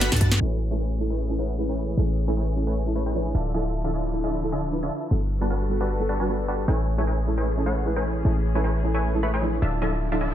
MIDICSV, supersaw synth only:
0, 0, Header, 1, 2, 480
1, 0, Start_track
1, 0, Key_signature, 3, "major"
1, 0, Tempo, 392157
1, 497, Time_signature, 4, 2, 24, 8
1, 12660, End_track
2, 0, Start_track
2, 0, Title_t, "Supersaw synth"
2, 0, Program_c, 0, 81
2, 148, Note_on_c, 0, 62, 80
2, 148, Note_on_c, 0, 71, 78
2, 149, Note_on_c, 0, 55, 83
2, 149, Note_on_c, 0, 78, 81
2, 149, Note_on_c, 0, 81, 97
2, 471, Note_off_c, 0, 55, 0
2, 471, Note_off_c, 0, 62, 0
2, 471, Note_off_c, 0, 71, 0
2, 471, Note_off_c, 0, 78, 0
2, 471, Note_off_c, 0, 81, 0
2, 496, Note_on_c, 0, 57, 93
2, 497, Note_on_c, 0, 64, 85
2, 497, Note_on_c, 0, 71, 82
2, 497, Note_on_c, 0, 73, 84
2, 498, Note_on_c, 0, 80, 99
2, 836, Note_off_c, 0, 57, 0
2, 836, Note_off_c, 0, 64, 0
2, 836, Note_off_c, 0, 71, 0
2, 836, Note_off_c, 0, 73, 0
2, 836, Note_off_c, 0, 80, 0
2, 866, Note_on_c, 0, 80, 93
2, 867, Note_on_c, 0, 57, 82
2, 867, Note_on_c, 0, 64, 79
2, 867, Note_on_c, 0, 71, 75
2, 867, Note_on_c, 0, 73, 77
2, 950, Note_off_c, 0, 57, 0
2, 950, Note_off_c, 0, 64, 0
2, 950, Note_off_c, 0, 71, 0
2, 950, Note_off_c, 0, 73, 0
2, 950, Note_off_c, 0, 80, 0
2, 975, Note_on_c, 0, 57, 68
2, 976, Note_on_c, 0, 64, 67
2, 976, Note_on_c, 0, 71, 64
2, 976, Note_on_c, 0, 73, 67
2, 976, Note_on_c, 0, 80, 78
2, 1315, Note_off_c, 0, 57, 0
2, 1315, Note_off_c, 0, 71, 0
2, 1316, Note_off_c, 0, 64, 0
2, 1316, Note_off_c, 0, 73, 0
2, 1316, Note_off_c, 0, 80, 0
2, 1347, Note_on_c, 0, 57, 84
2, 1347, Note_on_c, 0, 64, 75
2, 1347, Note_on_c, 0, 80, 91
2, 1348, Note_on_c, 0, 71, 76
2, 1348, Note_on_c, 0, 73, 77
2, 1670, Note_off_c, 0, 57, 0
2, 1670, Note_off_c, 0, 64, 0
2, 1670, Note_off_c, 0, 80, 0
2, 1671, Note_off_c, 0, 71, 0
2, 1671, Note_off_c, 0, 73, 0
2, 1697, Note_on_c, 0, 64, 79
2, 1697, Note_on_c, 0, 71, 80
2, 1697, Note_on_c, 0, 78, 97
2, 1698, Note_on_c, 0, 57, 86
2, 1698, Note_on_c, 0, 73, 78
2, 2036, Note_off_c, 0, 57, 0
2, 2036, Note_off_c, 0, 64, 0
2, 2036, Note_off_c, 0, 71, 0
2, 2036, Note_off_c, 0, 73, 0
2, 2036, Note_off_c, 0, 78, 0
2, 2067, Note_on_c, 0, 57, 87
2, 2068, Note_on_c, 0, 64, 82
2, 2068, Note_on_c, 0, 71, 80
2, 2068, Note_on_c, 0, 73, 80
2, 2068, Note_on_c, 0, 80, 96
2, 2756, Note_off_c, 0, 57, 0
2, 2756, Note_off_c, 0, 64, 0
2, 2756, Note_off_c, 0, 71, 0
2, 2756, Note_off_c, 0, 73, 0
2, 2756, Note_off_c, 0, 80, 0
2, 2788, Note_on_c, 0, 73, 73
2, 2788, Note_on_c, 0, 80, 85
2, 2789, Note_on_c, 0, 57, 81
2, 2789, Note_on_c, 0, 64, 70
2, 2789, Note_on_c, 0, 71, 73
2, 2871, Note_off_c, 0, 57, 0
2, 2871, Note_off_c, 0, 64, 0
2, 2871, Note_off_c, 0, 71, 0
2, 2871, Note_off_c, 0, 73, 0
2, 2871, Note_off_c, 0, 80, 0
2, 2897, Note_on_c, 0, 57, 78
2, 2897, Note_on_c, 0, 64, 70
2, 2897, Note_on_c, 0, 71, 70
2, 2897, Note_on_c, 0, 80, 83
2, 2898, Note_on_c, 0, 73, 69
2, 3236, Note_off_c, 0, 57, 0
2, 3236, Note_off_c, 0, 64, 0
2, 3236, Note_off_c, 0, 71, 0
2, 3236, Note_off_c, 0, 73, 0
2, 3236, Note_off_c, 0, 80, 0
2, 3268, Note_on_c, 0, 57, 94
2, 3268, Note_on_c, 0, 64, 82
2, 3268, Note_on_c, 0, 71, 84
2, 3268, Note_on_c, 0, 73, 86
2, 3268, Note_on_c, 0, 80, 103
2, 3508, Note_off_c, 0, 57, 0
2, 3509, Note_off_c, 0, 64, 0
2, 3509, Note_off_c, 0, 71, 0
2, 3509, Note_off_c, 0, 73, 0
2, 3509, Note_off_c, 0, 80, 0
2, 3616, Note_on_c, 0, 57, 91
2, 3617, Note_on_c, 0, 64, 82
2, 3617, Note_on_c, 0, 71, 85
2, 3617, Note_on_c, 0, 73, 80
2, 3617, Note_on_c, 0, 83, 100
2, 3716, Note_off_c, 0, 57, 0
2, 3716, Note_off_c, 0, 64, 0
2, 3716, Note_off_c, 0, 71, 0
2, 3716, Note_off_c, 0, 73, 0
2, 3716, Note_off_c, 0, 83, 0
2, 3747, Note_on_c, 0, 71, 75
2, 3748, Note_on_c, 0, 57, 83
2, 3748, Note_on_c, 0, 64, 77
2, 3748, Note_on_c, 0, 73, 76
2, 3748, Note_on_c, 0, 80, 94
2, 4070, Note_off_c, 0, 71, 0
2, 4071, Note_off_c, 0, 57, 0
2, 4071, Note_off_c, 0, 64, 0
2, 4071, Note_off_c, 0, 73, 0
2, 4071, Note_off_c, 0, 80, 0
2, 4096, Note_on_c, 0, 50, 90
2, 4096, Note_on_c, 0, 62, 80
2, 4096, Note_on_c, 0, 76, 81
2, 4096, Note_on_c, 0, 81, 98
2, 4097, Note_on_c, 0, 65, 79
2, 4310, Note_off_c, 0, 50, 0
2, 4310, Note_off_c, 0, 62, 0
2, 4310, Note_off_c, 0, 65, 0
2, 4310, Note_off_c, 0, 76, 0
2, 4310, Note_off_c, 0, 81, 0
2, 4336, Note_on_c, 0, 62, 82
2, 4337, Note_on_c, 0, 50, 93
2, 4337, Note_on_c, 0, 65, 86
2, 4337, Note_on_c, 0, 76, 85
2, 4337, Note_on_c, 0, 81, 101
2, 4676, Note_off_c, 0, 50, 0
2, 4676, Note_off_c, 0, 62, 0
2, 4676, Note_off_c, 0, 65, 0
2, 4676, Note_off_c, 0, 76, 0
2, 4676, Note_off_c, 0, 81, 0
2, 4705, Note_on_c, 0, 81, 93
2, 4706, Note_on_c, 0, 50, 85
2, 4706, Note_on_c, 0, 65, 78
2, 4706, Note_on_c, 0, 76, 81
2, 4707, Note_on_c, 0, 62, 77
2, 4790, Note_off_c, 0, 50, 0
2, 4790, Note_off_c, 0, 62, 0
2, 4790, Note_off_c, 0, 65, 0
2, 4790, Note_off_c, 0, 76, 0
2, 4790, Note_off_c, 0, 81, 0
2, 4817, Note_on_c, 0, 50, 70
2, 4817, Note_on_c, 0, 62, 68
2, 4817, Note_on_c, 0, 65, 64
2, 4817, Note_on_c, 0, 76, 66
2, 4817, Note_on_c, 0, 81, 79
2, 5156, Note_off_c, 0, 50, 0
2, 5156, Note_off_c, 0, 62, 0
2, 5156, Note_off_c, 0, 65, 0
2, 5156, Note_off_c, 0, 76, 0
2, 5156, Note_off_c, 0, 81, 0
2, 5185, Note_on_c, 0, 65, 77
2, 5186, Note_on_c, 0, 50, 83
2, 5186, Note_on_c, 0, 76, 75
2, 5186, Note_on_c, 0, 81, 95
2, 5187, Note_on_c, 0, 62, 75
2, 5509, Note_off_c, 0, 65, 0
2, 5510, Note_off_c, 0, 50, 0
2, 5510, Note_off_c, 0, 62, 0
2, 5510, Note_off_c, 0, 76, 0
2, 5510, Note_off_c, 0, 81, 0
2, 5535, Note_on_c, 0, 76, 82
2, 5535, Note_on_c, 0, 81, 94
2, 5536, Note_on_c, 0, 50, 86
2, 5536, Note_on_c, 0, 62, 83
2, 5536, Note_on_c, 0, 65, 82
2, 5875, Note_off_c, 0, 50, 0
2, 5875, Note_off_c, 0, 65, 0
2, 5875, Note_off_c, 0, 76, 0
2, 5875, Note_off_c, 0, 81, 0
2, 5876, Note_off_c, 0, 62, 0
2, 5908, Note_on_c, 0, 62, 77
2, 5908, Note_on_c, 0, 65, 83
2, 5908, Note_on_c, 0, 76, 80
2, 5908, Note_on_c, 0, 81, 95
2, 5909, Note_on_c, 0, 50, 85
2, 6244, Note_off_c, 0, 50, 0
2, 6244, Note_off_c, 0, 62, 0
2, 6244, Note_off_c, 0, 65, 0
2, 6244, Note_off_c, 0, 76, 0
2, 6244, Note_off_c, 0, 81, 0
2, 6627, Note_on_c, 0, 71, 73
2, 6627, Note_on_c, 0, 81, 89
2, 6628, Note_on_c, 0, 55, 77
2, 6628, Note_on_c, 0, 62, 72
2, 6628, Note_on_c, 0, 66, 73
2, 6710, Note_off_c, 0, 71, 0
2, 6710, Note_off_c, 0, 81, 0
2, 6711, Note_off_c, 0, 55, 0
2, 6711, Note_off_c, 0, 62, 0
2, 6711, Note_off_c, 0, 66, 0
2, 6736, Note_on_c, 0, 62, 70
2, 6736, Note_on_c, 0, 71, 70
2, 6736, Note_on_c, 0, 81, 85
2, 6737, Note_on_c, 0, 55, 77
2, 6737, Note_on_c, 0, 66, 70
2, 7075, Note_off_c, 0, 62, 0
2, 7076, Note_off_c, 0, 55, 0
2, 7076, Note_off_c, 0, 66, 0
2, 7076, Note_off_c, 0, 71, 0
2, 7076, Note_off_c, 0, 81, 0
2, 7107, Note_on_c, 0, 55, 92
2, 7107, Note_on_c, 0, 66, 85
2, 7107, Note_on_c, 0, 71, 81
2, 7108, Note_on_c, 0, 62, 85
2, 7108, Note_on_c, 0, 81, 99
2, 7348, Note_off_c, 0, 55, 0
2, 7348, Note_off_c, 0, 66, 0
2, 7348, Note_off_c, 0, 71, 0
2, 7349, Note_off_c, 0, 62, 0
2, 7349, Note_off_c, 0, 81, 0
2, 7455, Note_on_c, 0, 55, 89
2, 7455, Note_on_c, 0, 62, 81
2, 7455, Note_on_c, 0, 66, 82
2, 7455, Note_on_c, 0, 71, 84
2, 7455, Note_on_c, 0, 81, 100
2, 7555, Note_off_c, 0, 55, 0
2, 7555, Note_off_c, 0, 62, 0
2, 7555, Note_off_c, 0, 66, 0
2, 7555, Note_off_c, 0, 71, 0
2, 7555, Note_off_c, 0, 81, 0
2, 7588, Note_on_c, 0, 55, 83
2, 7588, Note_on_c, 0, 62, 77
2, 7588, Note_on_c, 0, 66, 77
2, 7588, Note_on_c, 0, 71, 77
2, 7588, Note_on_c, 0, 81, 91
2, 7911, Note_off_c, 0, 55, 0
2, 7911, Note_off_c, 0, 62, 0
2, 7911, Note_off_c, 0, 66, 0
2, 7911, Note_off_c, 0, 71, 0
2, 7911, Note_off_c, 0, 81, 0
2, 7936, Note_on_c, 0, 55, 91
2, 7936, Note_on_c, 0, 62, 86
2, 7936, Note_on_c, 0, 66, 83
2, 7936, Note_on_c, 0, 71, 84
2, 7936, Note_on_c, 0, 81, 99
2, 8150, Note_off_c, 0, 55, 0
2, 8150, Note_off_c, 0, 62, 0
2, 8150, Note_off_c, 0, 66, 0
2, 8150, Note_off_c, 0, 71, 0
2, 8150, Note_off_c, 0, 81, 0
2, 8176, Note_on_c, 0, 57, 95
2, 8176, Note_on_c, 0, 80, 101
2, 8177, Note_on_c, 0, 64, 82
2, 8177, Note_on_c, 0, 71, 83
2, 8177, Note_on_c, 0, 73, 83
2, 8516, Note_off_c, 0, 57, 0
2, 8516, Note_off_c, 0, 64, 0
2, 8516, Note_off_c, 0, 71, 0
2, 8516, Note_off_c, 0, 73, 0
2, 8516, Note_off_c, 0, 80, 0
2, 8546, Note_on_c, 0, 57, 87
2, 8546, Note_on_c, 0, 64, 78
2, 8546, Note_on_c, 0, 73, 80
2, 8547, Note_on_c, 0, 71, 79
2, 8547, Note_on_c, 0, 80, 94
2, 8630, Note_off_c, 0, 57, 0
2, 8630, Note_off_c, 0, 64, 0
2, 8630, Note_off_c, 0, 71, 0
2, 8630, Note_off_c, 0, 73, 0
2, 8630, Note_off_c, 0, 80, 0
2, 8656, Note_on_c, 0, 64, 65
2, 8656, Note_on_c, 0, 71, 66
2, 8656, Note_on_c, 0, 80, 77
2, 8657, Note_on_c, 0, 57, 73
2, 8657, Note_on_c, 0, 73, 66
2, 8996, Note_off_c, 0, 57, 0
2, 8996, Note_off_c, 0, 64, 0
2, 8996, Note_off_c, 0, 71, 0
2, 8996, Note_off_c, 0, 73, 0
2, 8996, Note_off_c, 0, 80, 0
2, 9028, Note_on_c, 0, 64, 78
2, 9028, Note_on_c, 0, 71, 78
2, 9028, Note_on_c, 0, 80, 91
2, 9029, Note_on_c, 0, 57, 82
2, 9029, Note_on_c, 0, 73, 76
2, 9351, Note_off_c, 0, 57, 0
2, 9351, Note_off_c, 0, 64, 0
2, 9351, Note_off_c, 0, 71, 0
2, 9351, Note_off_c, 0, 73, 0
2, 9351, Note_off_c, 0, 80, 0
2, 9377, Note_on_c, 0, 57, 88
2, 9377, Note_on_c, 0, 73, 80
2, 9378, Note_on_c, 0, 64, 81
2, 9378, Note_on_c, 0, 71, 80
2, 9378, Note_on_c, 0, 78, 97
2, 9716, Note_off_c, 0, 57, 0
2, 9716, Note_off_c, 0, 64, 0
2, 9716, Note_off_c, 0, 73, 0
2, 9717, Note_off_c, 0, 71, 0
2, 9717, Note_off_c, 0, 78, 0
2, 9748, Note_on_c, 0, 57, 91
2, 9748, Note_on_c, 0, 80, 98
2, 9749, Note_on_c, 0, 64, 82
2, 9749, Note_on_c, 0, 71, 80
2, 9749, Note_on_c, 0, 73, 83
2, 10436, Note_off_c, 0, 57, 0
2, 10436, Note_off_c, 0, 80, 0
2, 10437, Note_off_c, 0, 64, 0
2, 10437, Note_off_c, 0, 71, 0
2, 10437, Note_off_c, 0, 73, 0
2, 10468, Note_on_c, 0, 73, 73
2, 10469, Note_on_c, 0, 57, 81
2, 10469, Note_on_c, 0, 64, 74
2, 10469, Note_on_c, 0, 71, 75
2, 10469, Note_on_c, 0, 80, 90
2, 10551, Note_off_c, 0, 57, 0
2, 10551, Note_off_c, 0, 64, 0
2, 10551, Note_off_c, 0, 71, 0
2, 10551, Note_off_c, 0, 73, 0
2, 10551, Note_off_c, 0, 80, 0
2, 10576, Note_on_c, 0, 73, 71
2, 10577, Note_on_c, 0, 57, 78
2, 10577, Note_on_c, 0, 64, 68
2, 10577, Note_on_c, 0, 71, 70
2, 10577, Note_on_c, 0, 80, 85
2, 10916, Note_off_c, 0, 57, 0
2, 10916, Note_off_c, 0, 64, 0
2, 10916, Note_off_c, 0, 71, 0
2, 10916, Note_off_c, 0, 73, 0
2, 10916, Note_off_c, 0, 80, 0
2, 10947, Note_on_c, 0, 57, 93
2, 10947, Note_on_c, 0, 64, 85
2, 10947, Note_on_c, 0, 71, 88
2, 10947, Note_on_c, 0, 73, 85
2, 10947, Note_on_c, 0, 80, 102
2, 11188, Note_off_c, 0, 57, 0
2, 11188, Note_off_c, 0, 64, 0
2, 11188, Note_off_c, 0, 71, 0
2, 11188, Note_off_c, 0, 73, 0
2, 11188, Note_off_c, 0, 80, 0
2, 11297, Note_on_c, 0, 57, 89
2, 11297, Note_on_c, 0, 64, 83
2, 11297, Note_on_c, 0, 71, 86
2, 11297, Note_on_c, 0, 73, 85
2, 11298, Note_on_c, 0, 83, 102
2, 11396, Note_off_c, 0, 57, 0
2, 11396, Note_off_c, 0, 64, 0
2, 11396, Note_off_c, 0, 71, 0
2, 11396, Note_off_c, 0, 73, 0
2, 11396, Note_off_c, 0, 83, 0
2, 11428, Note_on_c, 0, 57, 83
2, 11428, Note_on_c, 0, 64, 75
2, 11428, Note_on_c, 0, 71, 76
2, 11428, Note_on_c, 0, 73, 77
2, 11428, Note_on_c, 0, 80, 92
2, 11751, Note_off_c, 0, 57, 0
2, 11751, Note_off_c, 0, 64, 0
2, 11751, Note_off_c, 0, 71, 0
2, 11751, Note_off_c, 0, 73, 0
2, 11751, Note_off_c, 0, 80, 0
2, 11776, Note_on_c, 0, 50, 95
2, 11776, Note_on_c, 0, 62, 84
2, 11776, Note_on_c, 0, 65, 81
2, 11776, Note_on_c, 0, 76, 85
2, 11776, Note_on_c, 0, 81, 100
2, 11990, Note_off_c, 0, 50, 0
2, 11990, Note_off_c, 0, 62, 0
2, 11990, Note_off_c, 0, 65, 0
2, 11990, Note_off_c, 0, 76, 0
2, 11990, Note_off_c, 0, 81, 0
2, 12015, Note_on_c, 0, 50, 90
2, 12016, Note_on_c, 0, 62, 85
2, 12016, Note_on_c, 0, 65, 86
2, 12016, Note_on_c, 0, 76, 85
2, 12016, Note_on_c, 0, 81, 106
2, 12355, Note_off_c, 0, 50, 0
2, 12356, Note_off_c, 0, 62, 0
2, 12356, Note_off_c, 0, 65, 0
2, 12356, Note_off_c, 0, 76, 0
2, 12356, Note_off_c, 0, 81, 0
2, 12386, Note_on_c, 0, 62, 80
2, 12386, Note_on_c, 0, 76, 80
2, 12386, Note_on_c, 0, 81, 97
2, 12387, Note_on_c, 0, 50, 84
2, 12387, Note_on_c, 0, 65, 79
2, 12470, Note_off_c, 0, 50, 0
2, 12470, Note_off_c, 0, 62, 0
2, 12470, Note_off_c, 0, 65, 0
2, 12470, Note_off_c, 0, 76, 0
2, 12470, Note_off_c, 0, 81, 0
2, 12495, Note_on_c, 0, 50, 73
2, 12496, Note_on_c, 0, 62, 68
2, 12496, Note_on_c, 0, 65, 64
2, 12496, Note_on_c, 0, 76, 68
2, 12496, Note_on_c, 0, 81, 80
2, 12660, Note_off_c, 0, 50, 0
2, 12660, Note_off_c, 0, 62, 0
2, 12660, Note_off_c, 0, 65, 0
2, 12660, Note_off_c, 0, 76, 0
2, 12660, Note_off_c, 0, 81, 0
2, 12660, End_track
0, 0, End_of_file